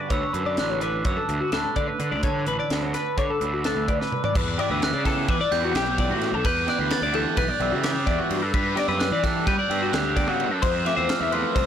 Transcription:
Already playing: B3
0.00 D5
0.08 D2 D3 B4 C#5 E6, kick, closed hi-hat
0.33 F#2 B4, closed hi-hat
0.46 D5
0.57 A1 F#4 F#6, snare, closed hi-hat
0.70 C#5
0.80 D4 B4 D6, closed hi-hat
1.05 F#2 B4 C#5 E6, kick, closed hi-hat
1.17 A4
1.29 D2, closed hi-hat
1.40 F#4
1.52 D2 A2 A4 B4 F#6, snare, closed hi-hat
1.76 D3 B4 D5, kick, closed hi-hat
1.88 B4
1.99 D3 B4, closed hi-hat
2.11 D2 D5
2.23 D3 B4 C#5 A5, kick, closed hi-hat
2.47 A1 B4, closed hi-hat
2.59 D5
2.70 D2 F#4, snare, closed hi-hat
2.83 C#5
2.94 D4 B4, snare, closed hi-hat
3.18 D3 B4 C#5 D6, kick, closed hi-hat
3.30 A4
3.41 D2 E6, closed hi-hat
3.53 F#4
3.64 A2 A4 B4 F#6, snare, closed hi-hat
3.76 D2
3.88 B4 D5, kick, closed hi-hat
4.01 B4, snare
4.12 B4, mid tom
4.24 D5, floor tom
4.35 E2 B4, kick, crash
4.58 E3 B3 E4 G4 D5 D6, ride
4.70 D2 B4 E6
4.82 F#6, snare, ride
4.93 C#3 D5
5.04 E3 B3 E4 G4 A4, kick, snare, ride
5.28 E3 B4 D6, kick, ride
5.41 D5
5.52 E2 E3 B3 E4 G4 G6, snare, ride
5.64 F#4
5.74 B1 G4 D6, snare, ride
5.98 E3 B3 E4 G4 D5, kick, ride
6.09 A2 F#4
6.21 snare, ride
6.32 B1 A4
6.45 E2 B4 G6, kick, ride
6.67 E3 B3 E4 G4 D5 F#6, snare, ride
6.79 D2 B4
6.91 A6, snare, ride
7.02 D2 D5
7.13 E3 B3 E4 G4 A4 G6, ride
7.37 B1 B4 F#6, kick, ride
7.48 D5
7.60 B1 E3 B3 E4 G4 E6, ride
7.72 C#3 F#4
7.83 G4 D6, snare, ride
8.06 E2 E3 B3 E4 G4 D5, kick, snare, ride
8.19 F#4
8.31 G2, ride
8.42 A4
8.54 G2 B4, kick, ride
8.76 G3 B3 D4 G4 D5 D6, snare, ride
8.88 F#2 B4 E6
9.00 F#6, snare, ride
9.11 E3 D5
9.23 G3 B3 D4 G4 A4 F#6, kick, snare, ride
9.47 G3 B4 G6, kick, snare, ride
9.59 D5
9.70 G2 G3 B3 D4 G4 E6, ride
9.82 F#4
9.93 D2 G4 F#6, snare, ride
10.16 G3 B3 D4 G4 D5, kick, ride
10.28 C#3 F#4
10.40 ride
10.51 F#2 A4
10.62 F2 C5, kick, ride
10.85 F3 A3 C4 F4 E5 D6, snare, ride
10.96 E2 C5 E6
11.09 F6, snare, ride
11.21 E2 E5
11.32 F3 A3 C4 F4 B4 C6, ride
11.55 C2 C5 E6, kick, snare, ride

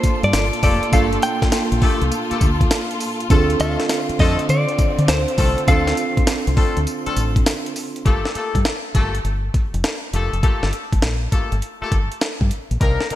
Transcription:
Already playing: A#2 A#3 D4 F4 A4 C5
0.03 muted fingered electric bass stroke, kick, closed hi-hat, tambourine
0.23 G2 D5, closed hi-hat
0.33 G1, snare, closed hi-hat, tambourine
0.53 closed hi-hat
0.63 F1 A3 A#3 F4 G4 A4 D5, kick, open hi-hat, tambourine
0.83 closed hi-hat
0.92 G1 A3 A#3 D4 F4 G4 A4 F5, kick, closed hi-hat, tambourine
1.13 closed hi-hat
1.22 G5, closed hi-hat, tambourine
1.42 muted fingered electric bass stroke, kick, snare, closed hi-hat
1.52 snare, closed hi-hat, tambourine
1.72 A#1, closed hi-hat
1.82 A3 A#3 F4 G4 A4, kick, open hi-hat
2.01 C2, closed hi-hat
2.12 closed hi-hat, tambourine
2.31 A3 A#3 F4 G4 A4, muted fingered electric bass stroke, closed hi-hat
2.41 D2, kick, closed hi-hat, tambourine
2.61 kick, closed hi-hat
2.71 snare, closed hi-hat, tambourine
2.91 closed hi-hat
3.00 open hi-hat, tambourine
3.20 closed hi-hat
3.30 D2 D3 A3 C4 D4 F4 G#4 A4, kick, closed hi-hat, tambourine
3.39 A4
3.50 closed hi-hat
3.60 D2 A3 C4 D4 F4 A4 F5, closed hi-hat, tambourine
3.80 snare, closed hi-hat
3.89 snare, closed hi-hat, tambourine
4.09 muted fingered electric bass stroke, closed hi-hat
4.19 F2 A3 C4 D4 F4 A4 D#5, kick, open hi-hat
4.39 closed hi-hat
4.49 D3 D5, closed hi-hat, tambourine
4.69 closed hi-hat
4.78 muted fingered electric bass stroke, kick, closed hi-hat, tambourine
4.98 D3, closed hi-hat
5.08 D2 C5, snare, closed hi-hat, tambourine
5.28 closed hi-hat
5.38 C2 A3 C4 D4 F4 A4, kick, open hi-hat, tambourine
5.58 closed hi-hat
5.67 D2 A3 C4 D4 F4 A4 F5, kick, closed hi-hat, tambourine
5.87 snare, closed hi-hat
5.97 closed hi-hat, tambourine
6.17 muted fingered electric bass stroke, kick, closed hi-hat
6.27 snare, closed hi-hat, tambourine
6.47 C2, closed hi-hat
6.57 A3 C4 D4 F4 A4, kick, open hi-hat
6.77 D2, closed hi-hat
6.87 closed hi-hat, tambourine
7.06 A3 C4 D4 F4 A4, muted fingered electric bass stroke, closed hi-hat
7.16 A1, closed hi-hat, tambourine
7.36 kick, closed hi-hat
7.46 snare, closed hi-hat, tambourine
7.66 closed hi-hat
7.76 open hi-hat, tambourine
7.96 closed hi-hat
8.05 G1 A3 A#3 F4 G4 A4, kick, closed hi-hat
8.25 snare
8.35 A3 A#3 F4 G4 A4, muted fingered electric bass stroke, closed hi-hat
8.55 G2, kick, closed hi-hat
8.65 snare, closed hi-hat
8.94 G1 A3 A#3 F4 G4 A4, kick, closed hi-hat
9.15 closed hi-hat
9.24 G1, closed hi-hat
9.54 kick, closed hi-hat
9.74 F1, closed hi-hat
9.84 snare, closed hi-hat
10.13 F1 A3 A#3 F4 G4 A4, closed hi-hat
10.33 F1, closed hi-hat
10.43 A3 A#3 F4 G4 A4, kick, closed hi-hat
10.63 G1, snare
10.73 closed hi-hat
10.93 G1, kick, closed hi-hat
11.02 A#1, snare, closed hi-hat
11.32 A3 A#3 F4 G4 A4, kick, closed hi-hat
11.52 G1, closed hi-hat
11.62 closed hi-hat
11.81 A3 A#3 F4 G4 A4, muted fingered electric bass stroke
11.92 G1, kick, closed hi-hat
12.12 closed hi-hat
12.21 snare, closed hi-hat
12.41 G2, kick
12.51 closed hi-hat
12.71 A#1, closed hi-hat
12.80 C2 A#3 C4 D4 D#4 A#4, kick, closed hi-hat
13.01 snare
13.10 A#3 C4 D4 D#4 A#4, muted fingered electric bass stroke, closed hi-hat

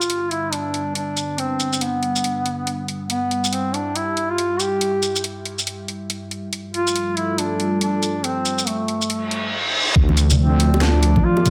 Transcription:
Already playing: G3 D4 F4 B4
0.01 shaker
0.10 closed hi-hat
0.31 E4, closed hi-hat
0.53 D4, closed hi-hat
0.74 closed hi-hat
0.95 D4, closed hi-hat
1.17 closed hi-hat, shaker
1.38 C4, closed hi-hat
1.60 closed hi-hat, shaker
1.73 shaker
1.81 B3, closed hi-hat
2.03 closed hi-hat
2.16 shaker
2.24 closed hi-hat
2.46 closed hi-hat
2.67 closed hi-hat
2.88 closed hi-hat
3.10 B3 G4 E5, closed hi-hat
3.31 closed hi-hat
3.44 shaker
3.53 C4, closed hi-hat
3.74 D4, closed hi-hat
3.96 E4, closed hi-hat
4.17 closed hi-hat
4.31 F4
4.38 closed hi-hat
4.60 G4, closed hi-hat, shaker
4.81 closed hi-hat
5.03 closed hi-hat, shaker
5.16 shaker
5.24 closed hi-hat
5.45 closed hi-hat
5.59 shaker
5.67 closed hi-hat
5.88 closed hi-hat
6.10 closed hi-hat
6.31 closed hi-hat
6.53 G3 F4 A4, closed hi-hat
6.74 F4, closed hi-hat
6.87 shaker
6.96 closed hi-hat
7.17 E4, closed hi-hat
7.38 D4, closed hi-hat
7.60 closed hi-hat
7.81 D4, closed hi-hat
8.03 closed hi-hat, shaker
8.24 C4, closed hi-hat
8.45 closed hi-hat, shaker
8.59 shaker
8.67 A3, closed hi-hat
8.88 closed hi-hat
9.02 shaker
9.10 closed hi-hat, reverse cymbal
9.31 closed hi-hat
9.96 D2 F3 A3 D5, kick
10.09 high conga
10.17 closed hi-hat, shaker
10.30 low conga, shaker
10.39 C4
10.60 closed hi-hat
10.74 high bongo
10.81 D4, snare, clap
11.03 closed hi-hat
11.16 kick, high conga
11.24 F4
11.37 high bongo
11.46 A1, kick, closed hi-hat, high conga, shaker

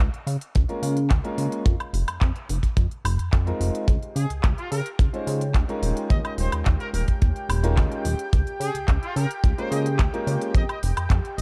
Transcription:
0.00 closed hi-hat
0.14 closed hi-hat
0.27 C#3, open hi-hat
0.41 closed hi-hat
0.55 C#2, kick, closed hi-hat
0.68 G#3 A#3 C#4 F4 A#4, closed hi-hat
0.82 C#3, open hi-hat
0.97 closed hi-hat
1.10 C#2, kick, clap, closed hi-hat
1.24 G#3 A#3 C#4 F4 A#4, closed hi-hat
1.38 C#3, open hi-hat
1.52 closed hi-hat
1.66 F2, kick, closed hi-hat
1.80 closed hi-hat, high woodblock
1.93 F1, open hi-hat
2.08 F2, closed hi-hat, high woodblock
2.21 F2, kick, clap, closed hi-hat
2.36 closed hi-hat
2.49 F1, open hi-hat
2.63 kick, closed hi-hat
2.77 F2, kick, closed hi-hat
2.91 closed hi-hat
3.05 F1, open hi-hat, high woodblock
3.19 F2, closed hi-hat
3.33 F2, kick, clap, closed hi-hat
3.46 G#3 C4 D#4 F4 A#4, closed hi-hat
3.60 F1, open hi-hat
3.75 closed hi-hat
3.88 C#2 G4 G5, kick, closed hi-hat
4.03 closed hi-hat
4.16 C#3 G#4, open hi-hat
4.30 C#2, closed hi-hat
4.43 C#2, kick, clap, closed hi-hat
4.58 F4, closed hi-hat
4.72 C#3 A#4, open hi-hat
4.86 closed hi-hat
4.99 C#2, kick, closed hi-hat
5.13 G#3 C#4 D#4 F4 C5, closed hi-hat
5.27 C#3, open hi-hat
5.41 closed hi-hat
5.54 C#2, kick, clap, closed hi-hat
5.68 G#3 C#4 D#4 F4 A#4, closed hi-hat
5.82 D#1, open hi-hat
5.97 closed hi-hat
6.10 D#2 D#5, kick, closed hi-hat
6.25 D#5, closed hi-hat, high woodblock
6.38 D#1 C5, open hi-hat
6.52 D#2, closed hi-hat, high woodblock
6.65 D#2, kick, clap, closed hi-hat
6.80 A#4, closed hi-hat
6.94 D#1 A#4, open hi-hat
7.08 kick, closed hi-hat
7.22 D#2, kick, closed hi-hat
7.36 closed hi-hat
7.49 D#1, open hi-hat, high woodblock
7.63 G#3 C#4 D#4 F4 A#4, closed hi-hat
7.77 D#2 G#3 C#4 D#4 F4, kick, clap, closed hi-hat
7.92 closed hi-hat
8.05 D#1, open hi-hat
8.19 closed hi-hat
8.33 C#2, kick, closed hi-hat
8.47 closed hi-hat
8.60 C#3 G#4, open hi-hat
8.74 C#2, closed hi-hat
8.88 C#2, kick, clap, closed hi-hat
9.03 F4, closed hi-hat
9.16 C#3 A#4, open hi-hat
9.31 closed hi-hat
9.44 C#2, kick, closed hi-hat
9.58 G#3 A#3 C#4 F4 A#4 C5, closed hi-hat
9.71 C#3 D#5, open hi-hat
9.86 closed hi-hat
9.99 C#2, kick, clap, closed hi-hat
10.13 G#3 A#3 C#4 F4 A#4, closed hi-hat
10.27 C#3, open hi-hat
10.42 closed hi-hat
10.55 F2 D#5, kick, closed hi-hat
10.69 D#5, closed hi-hat, high woodblock
10.83 F1, open hi-hat
10.97 F2, closed hi-hat, high woodblock
11.10 F2, kick, clap, closed hi-hat
11.25 closed hi-hat
11.38 F1 D#5, open hi-hat

